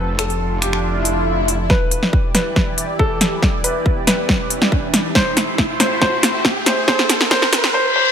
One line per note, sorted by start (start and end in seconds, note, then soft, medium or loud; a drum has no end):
0.00 1.68 F1 medium
0.00 1.68 D4 medium
0.00 1.68 F4 medium
0.00 1.66 A4 medium
0.00 0.10 B4 medium
0.19 0.48 A4 medium
0.19 finger snap medium
0.19 closed hi-hat medium
0.30 closed hi-hat soft
0.62 1.62 G4 medium
0.62 finger snap soft
0.62 closed hi-hat medium
0.73 finger snap medium
0.84 swell medium
1.05 closed hi-hat medium
1.48 closed hi-hat medium
1.70 5.12 E3 medium
1.70 5.12 E4 medium
1.70 7.70 G4 medium
1.70 2.26 B4 loud
1.70 5.12 D5 medium
1.70 kick loud
1.70 snare soft
1.70 riser medium
1.91 closed hi-hat medium
2.03 snare soft
2.13 kick loud
2.35 2.91 B4 medium
2.35 snare soft
2.35 closed hi-hat medium
2.56 kick loud
2.56 snare medium
2.78 closed hi-hat medium
2.99 3.56 A4 medium
2.99 kick medium
3.21 snare medium
3.21 closed hi-hat medium
3.43 kick loud
3.43 snare medium
3.64 3.93 B4 medium
3.64 closed hi-hat medium
3.86 kick loud
4.07 5.07 B4 medium
4.07 snare medium
4.07 closed hi-hat medium
4.29 kick loud
4.29 snare medium
4.50 closed hi-hat medium
4.62 snare medium
4.72 kick loud
4.94 snare medium
4.94 closed hi-hat medium
5.15 7.72 A3 medium
5.15 7.72 E4 medium
5.15 5.72 C5 medium
5.15 7.72 C5 medium
5.15 kick loud
5.15 snare medium
5.37 snare medium
5.37 closed hi-hat medium
5.58 kick loud
5.58 snare medium
5.80 6.00 C5 medium
5.80 snare medium
5.80 closed hi-hat medium
6.02 6.58 C5 loud
6.02 kick loud
6.02 snare medium
6.23 snare medium
6.23 closed hi-hat medium
6.45 kick loud
6.45 snare medium
6.66 6.86 C5 medium
6.66 snare medium
6.66 closed hi-hat medium
6.88 7.29 C5 loud
6.88 kick loud
6.88 snare medium
6.99 snare medium
7.09 snare loud
7.09 closed hi-hat medium
7.21 snare medium
7.31 7.73 C5 loud
7.31 kick loud
7.31 snare loud
7.42 snare medium
7.53 snare loud
7.53 closed hi-hat medium
7.64 snare medium
7.74 7.94 C5 loud
7.74 reverse cymbal medium
7.96 8.12 C5 loud